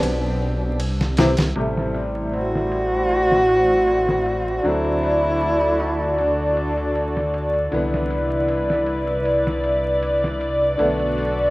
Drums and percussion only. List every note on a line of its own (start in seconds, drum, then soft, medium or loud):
0.03 ride medium
0.80 ride medium
1.01 snare soft
1.17 snare loud
1.17 ride medium
1.37 snare loud
1.37 ride medium
1.56 ride medium
1.78 snare soft
1.94 ride medium
2.15 ride soft
2.33 ride medium
2.55 snare soft
2.72 ride medium
2.92 ride soft
3.10 ride medium
3.32 snare soft
3.49 ride medium
3.87 ride medium
4.09 snare soft
4.26 ride medium
4.65 ride medium
4.85 ride soft
5.03 open hi-hat medium
5.41 ride medium
5.80 ride medium
6.18 ride medium
6.57 ride medium
6.77 ride soft
6.96 ride medium
7.17 snare soft
7.34 ride medium
7.54 ride soft
7.72 ride medium
7.94 snare soft
8.10 ride medium
8.30 ride soft
8.48 ride medium
8.70 snare soft
8.86 ride medium
9.07 ride soft
9.25 ride medium
9.47 snare soft
9.64 ride medium
10.03 ride medium
10.24 snare soft
10.41 ride medium
10.79 ride medium
10.99 ride soft
11.18 open hi-hat medium